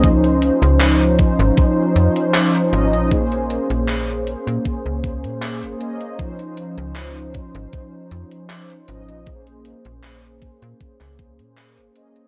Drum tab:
HH |xxxxx-xxx-xxxxxx|xxxxx-xxx-xxxxxx|xxxxx-xxx-xxxxxx|xxxxx-xxxxxxxxxx|
CP |----x-------x---|----x-------x---|----x-------x---|----x----x--x---|
BD |o-----o-o-------|o-------o-o-----|o-----o-o-------|o-----o-o-o-----|